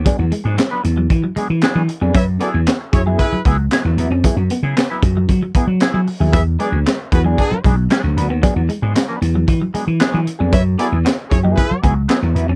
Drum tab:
HH |xxxxxxxx|xxxxxxxx|xxxxxxxo|xxxxxxxx|
CP |--x---x-|--x---x-|--x---x-|--x---x-|
SD |--o---o-|--o---o-|--o---o-|--o---o-|
BD |o---o---|o--ooo--|o--ooo--|o--ooo--|

HH |xxxxxxxx|xxxxxxxx|
CP |--x---x-|--x---x-|
SD |--o---o-|--o---o-|
BD |o---o---|o--ooo--|